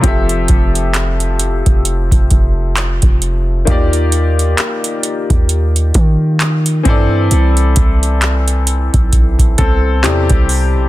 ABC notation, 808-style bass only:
X:1
M:4/4
L:1/16
Q:"Swing 16ths" 1/4=66
K:C
V:1 name="808-style bass" clef=bass
F,,,2 F,,,4- F,,, F,,,2 F,,, F,,,3 F,,,3 | _E,,4 z3 E,,3 _E,4 G,,2 | C,,2 C,,4- C,, B,,,3 C,,2 E,, C,,2 B,,, |]